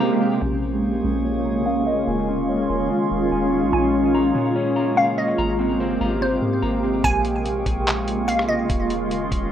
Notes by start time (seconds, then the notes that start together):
Already playing: C3 G#3 A#3 C4 G4 C5
0.00 A#5
0.21 C4
0.42 A#1 C#3 G#3 A#3 C#4 F4 G#4 C#5 G#5
0.83 A#5
1.04 A#1 C#4
1.25 C#5
1.45 A#5
1.66 C#4 F5
1.87 C#5 D#5
2.07 D#1 D#3 G#3 C#4 F4 C#5 G#5
2.29 C#4
2.49 C#5
2.70 D#1 G#5
2.90 C#4
3.11 D#1
3.32 D#1 G#5
3.53 C#4
3.63 A#1
3.73 A#1 C#3 A#3 C#4 G#4 G#5
4.15 A#5
4.35 A#2 C#4
4.56 C#5
4.76 A#5
4.97 C#4 F5
5.18 C#5 D#5
5.38 G#1 C3 G4 C5 A#5
5.59 C4
5.80 C5
6.01 G#1 A#5
6.21 C4 C5
6.42 G#2
6.62 G#1 A#5
6.83 C4
7.04 A#1 C#3 G#3 A#3 F4 G#4 C#5 G#5, kick, closed hi-hat
7.25 closed hi-hat
7.46 closed hi-hat
7.66 A#1, kick, closed hi-hat
7.87 clap, closed hi-hat
8.08 closed hi-hat
8.28 F5, closed hi-hat
8.39 cross-stick
8.49 D#5
8.70 D#1 D#3 G#3 C#4 F4 C#5, kick, closed hi-hat
8.90 closed hi-hat
9.11 closed hi-hat
9.32 D#1, kick, closed hi-hat